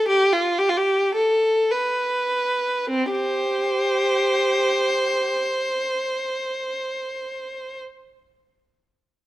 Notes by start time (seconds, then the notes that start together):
0.09 G4
0.33 F4
0.59 G4
0.69 F4
0.78 G4
1.15 A4
1.71 B4
2.90 C4
3.12 G4 C5